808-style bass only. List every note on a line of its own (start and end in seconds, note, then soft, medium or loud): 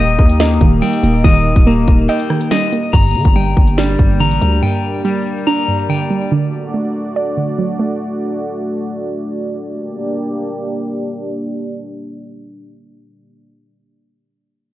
0.00 0.18 D#1 loud
0.19 0.59 D#2 loud
0.61 0.81 D#1 loud
1.03 1.24 D#1 loud
1.24 1.55 D#1 loud
1.56 1.87 D#1 loud
1.88 2.08 D#1 loud
2.93 3.16 G1 loud
3.15 3.25 D3 loud
3.25 3.56 G1 loud
3.57 3.97 G1 loud
3.99 4.22 G1 loud
4.20 4.40 A1 loud
4.41 4.62 D2 loud